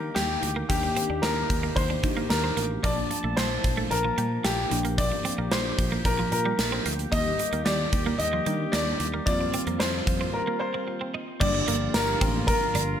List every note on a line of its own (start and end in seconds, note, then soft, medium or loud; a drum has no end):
0.00 0.65 D#3 medium
0.00 2.80 D#3 medium
0.00 0.65 A#3 medium
0.00 2.80 A#3 medium
0.00 0.66 D4 medium
0.00 0.66 G4 medium
0.00 2.80 G4 medium
0.00 0.12 A#4 medium
0.15 0.35 D#2 medium
0.15 0.25 G3 medium
0.15 0.53 G4 medium
0.15 snare loud
0.15 closed hi-hat medium
0.43 0.62 D2 medium
0.43 muted clean electric guitar stroke soft
0.43 closed hi-hat medium
0.56 0.65 A#3 medium
0.68 0.89 D#2 loud
0.68 2.00 D#3 medium
0.68 2.01 A#3 medium
0.68 2.01 D4 medium
0.68 1.24 G4 medium
0.68 2.01 G4 medium
0.68 kick medium
0.68 closed hi-hat medium
0.83 muted clean electric guitar stroke soft
0.97 1.05 C4 medium
0.97 closed hi-hat medium
1.10 1.19 D#2 medium
1.10 1.19 D4 medium
1.22 1.42 D#2 medium
1.22 1.32 C4 medium
1.22 1.78 A#4 medium
1.22 snare loud
1.22 closed hi-hat medium
1.36 muted clean electric guitar stroke soft
1.50 1.69 D#2 medium
1.50 kick medium
1.50 closed hi-hat medium
1.63 1.72 A#3 medium
1.76 1.96 D#2 medium
1.76 2.26 C5 medium
1.76 kick medium
1.76 closed hi-hat medium
1.90 1.99 D4 medium
2.03 2.84 D#3 soft
2.03 2.23 D#3 medium
2.03 2.82 A#3 soft
2.03 2.83 D4 soft
2.03 2.10 F#4 soft
2.03 muted clean electric guitar stroke soft
2.03 kick medium
2.03 closed hi-hat medium
2.10 2.87 G4 soft
2.17 2.25 A#3 medium
2.30 2.50 D#2 medium
2.30 2.67 A#4 medium
2.30 muted clean electric guitar stroke soft
2.30 snare loud
2.30 closed hi-hat medium
2.44 2.52 C4 medium
2.57 2.76 A1 medium
2.57 2.66 A#3 medium
2.57 closed hi-hat medium
2.83 3.03 A#1 medium
2.83 4.67 F3 medium
2.83 7.09 F3 medium
2.83 4.67 A#3 medium
2.83 2.93 A#3 medium
2.83 9.23 A#3 medium
2.83 4.68 D4 medium
2.83 3.39 D5 medium
2.83 4.70 A5 medium
2.83 4.68 A5 medium
2.83 kick loud
2.83 closed hi-hat medium
3.11 muted clean electric guitar stroke soft
3.11 closed hi-hat medium
3.24 3.34 A#1 medium
3.24 3.33 A3 medium
3.37 3.57 A#1 medium
3.37 3.46 G3 medium
3.37 3.92 C5 medium
3.37 snare loud
3.37 closed hi-hat medium
3.64 3.84 A#1 medium
3.64 muted clean electric guitar stroke soft
3.64 kick medium
3.64 closed hi-hat medium
3.77 3.86 A3 medium
3.91 4.10 A#1 medium
3.91 4.46 A#4 medium
3.91 muted clean electric guitar stroke soft
3.91 closed hi-hat medium
4.05 4.13 F3 medium
4.18 4.37 A#2 medium
4.18 4.27 G3 medium
4.18 closed hi-hat medium
4.44 4.64 A#1 medium
4.44 4.53 A3 medium
4.44 4.82 G4 medium
4.44 snare loud
4.44 closed hi-hat medium
4.70 5.10 A#1 medium
4.70 6.81 F3 medium
4.70 6.81 A#3 medium
4.70 6.82 D4 medium
4.70 7.10 G4 medium
4.70 6.82 G4 medium
4.70 muted clean electric guitar stroke soft
4.70 closed hi-hat medium
4.85 4.93 A#3 medium
4.85 closed hi-hat soft
4.98 5.48 D5 medium
4.98 kick medium
4.98 closed hi-hat medium
5.12 muted clean electric guitar stroke soft
5.25 5.34 C4 medium
5.25 closed hi-hat medium
5.38 5.48 A#1 medium
5.38 5.47 A#3 medium
5.51 5.71 A#1 medium
5.51 5.60 G3 medium
5.51 6.07 C5 medium
5.51 snare loud
5.51 closed hi-hat medium
5.65 muted clean electric guitar stroke soft
5.79 5.98 A#1 medium
5.79 kick medium
5.79 closed hi-hat medium
5.92 6.01 A#3 medium
6.05 6.24 A#1 medium
6.05 6.30 A#4 medium
6.05 kick medium
6.05 closed hi-hat medium
6.19 6.28 F3 medium
6.32 6.51 A#2 medium
6.32 6.82 A#4 medium
6.32 muted clean electric guitar stroke soft
6.32 closed hi-hat medium
6.46 6.54 G3 medium
6.59 6.78 A#1 medium
6.59 muted clean electric guitar stroke soft
6.59 snare loud
6.59 closed hi-hat medium
6.72 6.81 C4 medium
6.86 7.05 D2 medium
6.86 6.95 A#3 medium
6.86 closed hi-hat medium
6.99 closed hi-hat medium
7.11 7.32 D#2 medium
7.11 8.44 D3 medium
7.11 8.43 D#3 medium
7.11 11.24 G3 medium
7.11 8.43 A#3 medium
7.11 7.21 D#4 medium
7.11 9.25 G4 medium
7.11 8.44 G4 medium
7.11 7.62 D#5 loud
7.11 kick loud
7.11 closed hi-hat medium
7.39 muted clean electric guitar stroke soft
7.39 closed hi-hat medium
7.53 7.62 D#2 medium
7.53 7.62 A#3 medium
7.53 closed hi-hat soft
7.65 7.85 D#2 loud
7.65 7.75 G3 medium
7.65 8.21 D5 medium
7.65 snare loud
7.65 closed hi-hat medium
7.93 8.12 D#2 medium
7.93 muted clean electric guitar stroke soft
7.93 kick medium
7.93 closed hi-hat medium
8.06 8.15 A#3 medium
8.18 8.39 D#2 medium
8.18 8.74 D#5 medium
8.18 muted clean electric guitar stroke soft
8.18 closed hi-hat medium
8.33 8.42 F3 medium
8.46 9.24 D#3 soft
8.46 8.66 D#3 medium
8.46 8.55 G3 medium
8.46 9.25 A#3 soft
8.46 9.27 D4 soft
8.46 9.27 G4 medium
8.46 closed hi-hat medium
8.72 8.93 D#2 medium
8.72 8.82 A#3 medium
8.72 9.24 D5 medium
8.72 snare loud
8.72 closed hi-hat medium
9.00 9.19 D#2 medium
9.00 muted clean electric guitar stroke soft
9.00 closed hi-hat medium
9.14 9.22 A#3 medium
9.26 9.46 F2 loud
9.26 11.36 D#3 medium
9.26 11.37 A#3 medium
9.26 11.24 A#3 medium
9.26 11.24 C4 medium
9.26 11.37 C4 medium
9.26 11.24 F4 medium
9.26 11.38 F4 medium
9.26 9.76 D5 medium
9.26 kick loud
9.26 closed hi-hat medium
9.41 muted clean electric guitar stroke soft
9.54 9.62 C4 medium
9.54 closed hi-hat medium
9.67 9.77 F2 medium
9.67 9.76 A#3 medium
9.67 closed hi-hat soft
9.80 10.00 F2 medium
9.80 9.89 D4 medium
9.80 10.30 C5 medium
9.80 snare loud
9.80 closed hi-hat medium
9.94 muted clean electric guitar stroke soft
10.07 10.26 F2 medium
10.07 kick medium
10.07 closed hi-hat medium
10.21 10.29 C4 medium
10.34 10.84 A#4 medium
10.47 10.56 A#3 medium
10.60 11.43 C5 medium
10.60 muted clean electric guitar stroke soft
10.74 10.83 C4 medium
10.88 muted clean electric guitar stroke soft
11.01 11.10 C4 medium
11.14 11.23 D#4 medium
11.40 11.60 G1 loud
11.40 13.00 D3 medium
11.40 13.00 F3 medium
11.40 13.00 G3 medium
11.40 11.50 G3 medium
11.40 13.00 A#3 medium
11.40 13.00 D4 medium
11.40 13.00 F4 medium
11.40 13.00 G4 medium
11.40 11.96 D5 medium
11.40 kick loud
11.40 crash medium
11.55 muted clean electric guitar stroke soft
11.68 11.87 G1 medium
11.68 11.77 A#3 medium
11.68 closed hi-hat medium
11.94 12.14 G1 loud
11.94 12.46 A#4 medium
11.94 snare loud
11.94 closed hi-hat medium
11.94 tambourine medium
12.21 12.50 A1 medium
12.21 12.30 C4 medium
12.21 kick loud
12.21 closed hi-hat medium
12.47 13.00 A#4 medium
12.47 kick loud
12.47 closed hi-hat medium
12.75 12.94 G1 loud
12.75 12.84 D4 medium
12.75 closed hi-hat medium